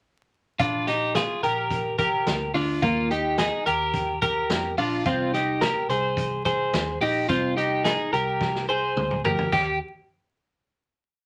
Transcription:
0.59 1.26 A#1 medium
0.59 0.88 D4 medium
0.59 0.87 F4 medium
0.59 kick medium
0.59 closed hi-hat medium
0.87 1.16 D#4 medium
0.87 1.15 G4 medium
0.87 snare soft
0.87 closed hi-hat medium
1.15 1.44 F4 medium
1.15 1.43 G#4 medium
1.15 snare medium
1.15 closed hi-hat medium
1.43 2.23 A#1 medium
1.43 1.96 G4 soft
1.43 1.96 A#4 medium
1.43 closed hi-hat medium
1.71 kick medium
1.71 closed hi-hat medium
1.99 2.51 G4 soft
1.99 2.51 A#4 medium
1.99 kick medium
1.99 closed hi-hat medium
2.26 2.50 D2 medium
2.26 snare medium
2.26 closed hi-hat medium
2.54 2.78 D2 medium
2.54 2.83 D4 medium
2.54 2.81 F4 medium
2.54 open hi-hat medium
2.82 3.49 D#2 medium
2.82 3.11 A#3 medium
2.82 3.10 F4 medium
2.82 kick loud
2.82 closed hi-hat medium
3.11 3.38 D#4 medium
3.11 3.38 G4 medium
3.11 closed hi-hat medium
3.38 3.67 D#4 medium
3.38 3.66 G#4 medium
3.38 snare medium
3.38 closed hi-hat medium
3.66 4.46 D#2 medium
3.66 4.19 G4 medium
3.66 4.19 A#4 medium
3.66 closed hi-hat medium
3.94 kick medium
3.94 closed hi-hat medium
4.22 4.75 G4 soft
4.22 4.74 A#4 medium
4.22 kick medium
4.22 closed hi-hat medium
4.50 4.73 F2 medium
4.50 snare loud
4.50 closed hi-hat medium
4.78 5.01 A#1 medium
4.78 5.06 D4 medium
4.78 5.05 F4 medium
4.78 open hi-hat medium
5.06 5.72 C2 loud
5.06 5.34 C4 medium
5.06 5.33 F4 medium
5.06 kick medium
5.06 closed hi-hat medium
5.34 5.62 D#4 medium
5.34 5.61 G4 medium
5.34 snare soft
5.34 closed hi-hat medium
5.61 5.90 G4 medium
5.61 5.89 A#4 medium
5.61 snare medium
5.61 closed hi-hat medium
5.89 6.69 C2 medium
5.89 6.42 G#4 medium
5.89 6.42 C5 medium
5.89 closed hi-hat medium
6.17 kick medium
6.17 closed hi-hat medium
6.45 6.98 G#4 soft
6.45 6.98 C5 medium
6.45 kick medium
6.45 closed hi-hat medium
6.73 6.97 D#2 medium
6.73 snare medium
6.73 closed hi-hat medium
7.01 7.24 A#1 medium
7.01 7.29 D#4 medium
7.01 7.28 G4 medium
7.01 open hi-hat medium
7.29 7.95 C2 medium
7.29 7.57 C4 medium
7.29 7.56 F4 medium
7.29 kick medium
7.29 closed hi-hat medium
7.57 7.84 D#4 medium
7.57 7.85 G4 medium
7.57 closed hi-hat medium
7.85 8.13 D#4 medium
7.85 8.12 G#4 medium
7.85 snare medium
7.85 closed hi-hat medium
8.13 8.92 C2 medium
8.13 8.65 G4 medium
8.13 8.65 A#4 medium
8.13 closed hi-hat medium
8.41 kick medium
8.41 snare medium
8.55 snare soft
8.69 9.22 G#4 soft
8.69 9.21 C5 medium
8.96 9.20 D2 medium
8.96 mid tom medium
9.11 mid tom medium
9.24 9.48 D2 medium
9.24 9.52 G4 medium
9.24 9.53 A#4 medium
9.24 floor tom medium
9.39 floor tom medium
9.52 9.78 D#2 medium
9.52 9.78 G4 medium
9.52 kick medium
9.52 crash medium

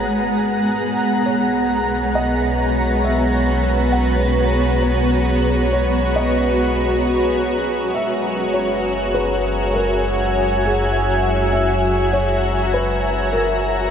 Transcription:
0.00 0.77 G#1 medium
0.00 0.82 G#3 medium
0.00 13.91 G#3 medium
0.00 0.81 B3 medium
0.00 3.69 G#4 medium
0.00 13.91 G#4 medium
0.00 0.54 C#5 medium
0.00 3.68 F#5 medium
0.00 10.49 A#5 medium
0.82 7.94 B1 medium
0.82 7.99 B3 medium
1.17 13.91 C#5 medium
1.26 2.18 C#5 medium
1.34 13.91 F#4 medium
2.07 8.00 B4 medium
2.15 2.57 D#5 medium
3.04 3.97 E5 medium
3.92 4.35 F#5 medium
4.82 5.76 B4 medium
5.73 6.15 C#5 medium
6.16 7.48 D#5 medium
7.95 13.91 F#1 medium
7.95 8.58 E5 medium
8.41 13.91 E5 medium
8.41 13.91 G#5 medium
8.54 9.17 C#5 medium
9.14 9.77 B4 medium
9.74 10.68 A#4 medium
10.65 11.29 G#4 medium
11.17 13.91 A#5 medium
11.53 12.16 E5 medium
12.13 12.76 C#5 medium
12.74 13.36 B4 medium
13.33 13.91 A#4 medium

